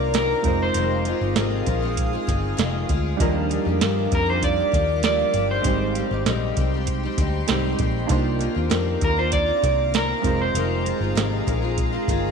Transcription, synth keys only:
Already playing: A#3 D4 D#4 F4 C5
0.43 G#3 C4 D#4 F4
0.47 C5
3.17 G3 D4 D#4 F4
3.22 A#4
5.62 G#3 C4 D#4
5.66 G4 C5
7.47 G#3 C4 D#4 G4 C5
8.07 A#3 D4 D#4 F4
8.12 C5
10.22 G#3 C4 D#4 F4
10.27 C5

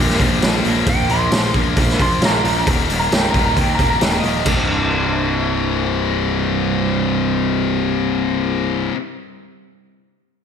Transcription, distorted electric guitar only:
Already playing: G2 D3 G3
0.19 G2 D3 G3
0.43 G2 D3 G3
0.65 G2 D3 G3
0.87 A#2 F3 A#3
1.09 A#2 F3 A#3
1.32 A#2 F3 A#3
1.56 A#2 F3 A#3
1.78 A#2 F3 A#3
1.99 A#2 F3 A#3
2.22 A#2 F3 A#3
2.44 A#2 F3 A#3
2.68 D#2 A#2 D#3
2.90 D#2 A#2 D#3
3.12 D#2 A#2 D#3
3.35 D#2 A#2 D#3
3.57 D#2 A#2 D#3
3.79 D#2 A#2 D#3
4.01 D#2 A#2 D#3
4.24 D#2 A#2 D#3
4.46 C2 G2 C3

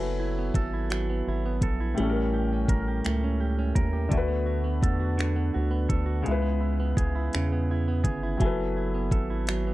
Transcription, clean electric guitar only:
Already playing: F#3
0.03 B3
0.20 E4
0.38 B3
0.55 A4
0.74 E4
0.90 F#3
1.10 B3
1.28 E4
1.46 B3
1.63 A4
1.80 E4
1.98 A3
2.15 C#4
2.34 G4
2.53 C#4
2.69 A#4
2.88 G4
3.05 A3
3.24 C#4
3.40 G4
3.59 C#4
3.75 A#4
3.93 G4
4.11 D3
4.28 B3
4.46 F#4
4.64 B3
4.83 A4
5.00 F#4
5.18 D3
5.36 B3
5.54 F#4
5.71 B3
5.89 A4
6.06 F#4
6.23 C#3
6.42 B3
6.61 E4
6.80 B3
6.97 G#4
7.15 E4
7.35 C#3
7.52 B3
7.71 E4
7.88 B3
8.04 G#4
8.23 E4
8.41 F#3
8.60 B3
8.77 E4
8.94 B3
9.12 A4
9.30 E4
9.49 F#3
9.67 B3

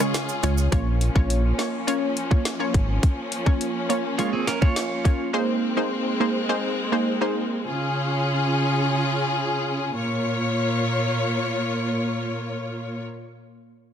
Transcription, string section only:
Already playing: C#3 C#4 F4 G#4
0.72 F3 A#3 C#4
5.34 G#3 C4
7.64 C#3 C#4 F4 G#4
9.95 A#2 A#3 F4 C#5

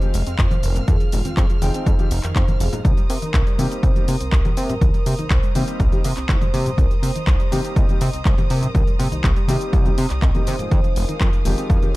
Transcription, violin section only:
Already playing: G#3 F5 F6
2.85 C5 A#5 D#6
10.72 G#3 F5

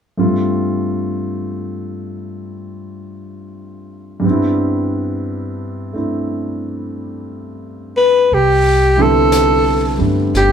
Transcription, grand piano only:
0.17 G2 G3 A3 C4 F4
4.20 G2 G3
4.24 B3 C4
4.30 D4 E4
5.93 A3 C4 D4 E4
8.97 D3 G3 B3 C4 E4
9.98 G3 A3 B3 D4

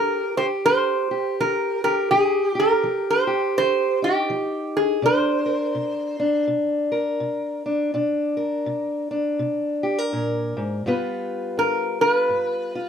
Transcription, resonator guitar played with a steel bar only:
Already playing: A#4
0.37 C5
0.66 C5
1.41 A#4
1.84 A#4
2.11 G#4
2.60 A#4
3.10 C5
3.58 C5
4.04 G4
4.77 G#4
5.06 C5
11.59 A#4
12.01 B4

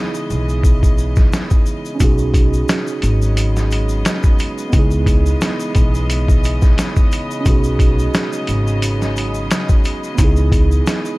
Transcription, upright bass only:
0.30 B1
2.01 B1
3.03 G#1
4.73 C#2
5.76 B1
7.46 B1
8.49 G#1
10.19 C#2

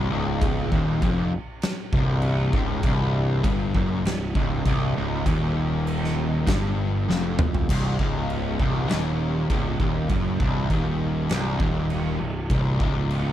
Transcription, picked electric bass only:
0.10 C#1
0.72 D#1
1.02 F1
1.93 C1
2.53 C#1
2.83 C1
3.44 G1
3.75 F#1
4.04 C1
4.35 C#1
4.66 C1
4.96 C#1
5.26 D#1
6.48 G1
7.09 F1
7.69 C1
7.99 C#1
8.60 C1
8.89 D#1
9.50 C#1
9.80 D#1
10.09 F#1
10.40 C1
10.70 D#1
11.30 C1
11.60 D#1
12.20 C1
12.50 C1
12.80 C#1

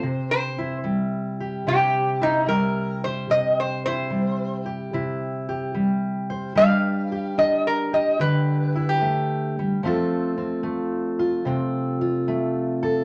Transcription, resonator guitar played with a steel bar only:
Already playing: C5
0.31 C5
1.68 G4
2.23 D#4
2.48 A#4
3.04 C5
3.31 D#5
3.60 C5
3.86 C5
6.57 F5
7.39 D#5
7.67 A#4
7.94 D#5
8.21 B4

